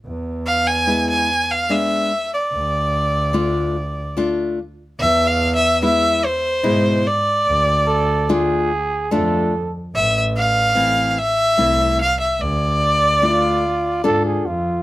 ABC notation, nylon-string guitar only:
X:1
M:3/4
L:1/8
Q:1/4=73
K:none
V:1 name="Nylon-string guitar"
z2 [^G,B,E] z [G,B,D] z | z2 [A,DF] z [A,DF] z | z2 [^G,B,E] z [B,,G,E] z | z2 [A,DF] z [A,DF] z |
z2 [E,A,C] z [A,CE] z | z2 [A,DF] z [DFA] z |]